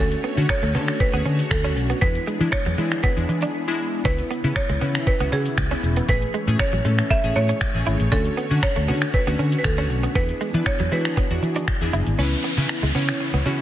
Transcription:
Already playing: A3 C#5
0.00 D2 D3 C#4 D4 F#4 A4
0.12 closed hi-hat, shaker
0.24 B3, shaker
0.37 D3 C#4 D4 F#4, muted clean electric guitar stroke, closed hi-hat, shaker
0.49 C#5, finger snap, muted clean electric guitar stroke, kick, shaker
0.62 D2 A3, closed hi-hat, shaker
0.74 D3 B3 C#4 D4 A4, shaker
0.88 finger snap, closed hi-hat, shaker
1.00 B4, muted clean electric guitar stroke, kick, shaker
1.13 D2 B3 C#4 D4 G#4, closed hi-hat, shaker
1.25 D3 C#4, shaker
1.39 closed hi-hat, shaker
1.51 D2 A4, finger snap, kick, shaker
1.64 C#4 D4 F#4, closed hi-hat, shaker
1.76 B1, muted clean electric guitar stroke, shaker
1.90 B3, closed hi-hat, shaker
2.01 E2 E3 G#3 B3 D4 E4 G#4 B4, kick, shaker
2.15 closed hi-hat, shaker
2.27 G#3, shaker
2.40 E3 G#3 D4 E4, muted clean electric guitar stroke, closed hi-hat, shaker
2.52 C#5, finger snap, muted clean electric guitar stroke, kick, shaker
2.66 E2 F#3, closed hi-hat, shaker
2.78 E3 G#3 D4 E4, shaker
2.91 finger snap, closed hi-hat, shaker
3.03 B3 B4, kick, shaker
3.17 E2 G#3 D4 E4, closed hi-hat, shaker
3.29 E3, muted clean electric guitar stroke, shaker
3.42 D4, closed hi-hat, shaker
3.68 G#3 D4 E4
4.05 C#2 C#3 E3 B3 C#4 E4 B4, kick, shaker
4.18 closed hi-hat, shaker
4.31 B3, shaker
4.44 C#3 B3 C#4 E4, muted clean electric guitar stroke, closed hi-hat, shaker
4.56 C#5, finger snap, muted clean electric guitar stroke, kick, shaker
4.69 C#2 G#3, closed hi-hat, shaker
4.81 C#3 B3 C#4 E4, shaker
4.95 finger snap, closed hi-hat, shaker
5.07 B4, muted clean electric guitar stroke, kick, shaker
5.20 C#2 B3 C#4 F#4, closed hi-hat, shaker
5.32 C#3 C#4 G#4, shaker
5.46 closed hi-hat, shaker
5.58 C#2, finger snap, kick, shaker
5.71 B3 C#4 E4, closed hi-hat, shaker
5.83 E1, muted clean electric guitar stroke, shaker
5.96 B3, closed hi-hat, shaker
6.08 A1 A3 C#4 G#4 B4 C#5, kick, shaker
6.22 closed hi-hat, shaker
6.34 G#3, shaker
6.47 A2 A3 C#4 G#4, muted clean electric guitar stroke, closed hi-hat, shaker
6.59 C#5, finger snap, muted clean electric guitar stroke, kick, shaker
6.73 A1 F#3, closed hi-hat, shaker
6.85 A2 G#3 A3 C#4 A4, shaker
6.98 finger snap, closed hi-hat, shaker
7.10 A3 E5, kick, shaker
7.24 A1 A3 C#4 G#4, closed hi-hat, shaker
7.36 A2 C#5, muted clean electric guitar stroke, shaker
7.49 C#4, closed hi-hat, shaker
7.61 finger snap, kick, shaker
7.75 A1 A3 C#4 G#4, closed hi-hat, shaker
7.87 G#1 E4, shaker
8.00 A1, closed hi-hat, shaker
8.12 D2 D3 C#4 D4 F#4 A4, kick, shaker
8.25 closed hi-hat, shaker
8.37 B3, shaker
8.51 D3 C#4 D4 F#4, muted clean electric guitar stroke, closed hi-hat, shaker
8.63 C#5, finger snap, muted clean electric guitar stroke, kick, shaker
8.76 D2 A3, closed hi-hat, shaker
8.88 D3 B3 C#4 D4 F#4, shaker
9.01 finger snap, closed hi-hat, shaker
9.14 B4, muted clean electric guitar stroke, kick, shaker
9.27 D2 B3 C#4 D4 F#4, closed hi-hat, shaker
9.39 D3 C#4, shaker
9.52 closed hi-hat, shaker
9.59 B4
9.64 D2 A4, finger snap, kick, shaker
9.78 C#4 D4 F#4, closed hi-hat, shaker
9.90 B1, muted clean electric guitar stroke, shaker
10.03 B3, closed hi-hat, shaker
10.15 E2 E3 B3 D4 E4 G#4 B4, kick, shaker
10.29 closed hi-hat, shaker
10.41 G#3, shaker
10.54 E3 D4 E4 B4, muted clean electric guitar stroke, closed hi-hat, shaker
10.66 C#5, finger snap, muted clean electric guitar stroke, kick, shaker
10.80 E2 F#3, closed hi-hat, shaker
10.91 E3 G#3 D4 E4 F#4 B4, shaker
11.05 finger snap, closed hi-hat, shaker
11.17 B3, kick, shaker
11.31 E2 D4 E4 F#4, closed hi-hat, shaker
11.42 E3, muted clean electric guitar stroke, shaker
11.56 D4, closed hi-hat, shaker
11.68 finger snap, kick, shaker
11.81 E2 D4 E4 G#4, closed hi-hat, shaker
11.93 F#1 E4, shaker
12.07 G#1, closed hi-hat, shaker
12.19 C#2 C#3 E3 B3 C#4 E4 B4, downlifter
12.44 B3
12.57 C#3 C#4 E4 B4, muted clean electric guitar stroke
12.69 finger snap, muted clean electric guitar stroke
12.83 C#2 G#3
12.95 C#3 B3 C#4 E4 C#5
13.09 finger snap
13.20 muted clean electric guitar stroke
13.34 C#2 B3
13.46 C#3 C#4 E4 F#4

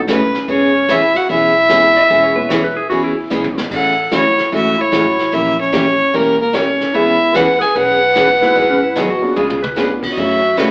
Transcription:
Already playing: E1
0.07 C#3 E3 A3 C#4 F#4 B4, snare, hi-hat pedal
0.34 snare
0.48 E1 E3 B3 C#4 G#4 C#5, brush sweep
0.88 E3 B3 C#4 E4 G#4 E5, snare, hi-hat pedal
1.15 F#4 F#5, snare
1.29 B1 E3 B3 C#4 E4 G#4 E5, brush sweep
1.69 E3 G#3 B3 C#4 E4 G#4, snare, hi-hat pedal
1.96 E5, snare
2.10 E1 E3 B3 C#4 G#4, brush sweep
2.23 C#5
2.35 E3 G#3 B3 C#4 E4 B4
2.49 E3 B3 C#4 G#4 C#5, snare, hi-hat pedal
2.64 B4
2.76 G#4
2.90 C#2 E3 B3 C#4 F#4 G#4, brush sweep
3.04 E4
3.30 B1 E3 G#3 B3 C#4 E4 G#4, hi-hat pedal, high tom
3.44 high tom
3.57 snare
3.71 A1 C#3 E3 A3 C#4 F#4 A4 F#5, brush sweep, kick, crash
4.11 F#1 C#3 E3 A3 C#4 E4 F#4 C#5, snare, hi-hat pedal
4.38 snare
4.52 G#1 C#3 E3 A3 C#4 F#4 E5, brush sweep
4.78 E4 C#5
4.92 A1 C#3 E3 F#3 A3 C#4 E4 F#4, snare, hi-hat pedal
5.19 snare
5.32 A#1 E3 A#3 C#4 E4 G4 A#4 E5, brush sweep
5.59 C#4 C#5
5.72 E3 A#3 C#4 G4 A#4, snare, hi-hat pedal
6.13 E1 E3 A#3 C#4 G4 A#4, brush sweep
6.39 A#3 A#4
6.53 E3 A#3 C#4 G4 A#4 C#5, snare, hi-hat pedal
6.80 snare
6.94 E2 E3 G#3 B3 C#4 E4 G#4 E5, brush sweep
7.34 E3 B3 C#4 G#4 B4 F#5, snare, hi-hat pedal
7.60 G#4 G#5, snare
7.75 B1 E3 B3 C#4 G#4 B4 F#5, brush sweep
8.15 E3 B3 C#4 G#4, snare, hi-hat pedal
8.41 G#3 B3 D#4 E4 F#4 G#4, snare
8.55 G#1 D#3 F#3 B3 D#4 G#4, brush sweep
8.70 C#4
8.83 E4
8.96 D#3 F#3 B3 D#4 G#4, snare, hi-hat pedal
9.10 F#4
9.22 B3 C#4 D4 F4 G#4
9.36 C#2 C#3 G#3 B3 F4 G#4, mid tom
9.50 mid tom
9.63 B4, mid tom
9.76 C#3 G#3 B3 C#4 D4 F4 G#4 B4, snare, hi-hat pedal
10.03 kick, crash
10.11 F#4 D#5
10.16 F#2 C#3 E3 A3 C#4 F#4 E5, brush sweep
10.57 C#3 E3 A3 C#4 F#4 B4, snare, hi-hat pedal

